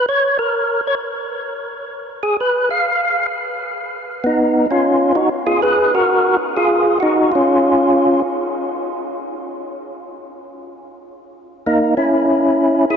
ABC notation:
X:1
M:4/4
L:1/8
Q:"Swing" 1/4=129
K:Dbmix
V:1 name="Tonewheel organ"
d B2 d z4 | z A c f3 z2 | z2 [CE]2 [DF]2 [EG] [FA] | [Ac] [GB]2 z [FA]2 [EG] [DF]- |
[DF]3 z4 z | z8 | z2 [B,E] [D_F]4 [FA] |]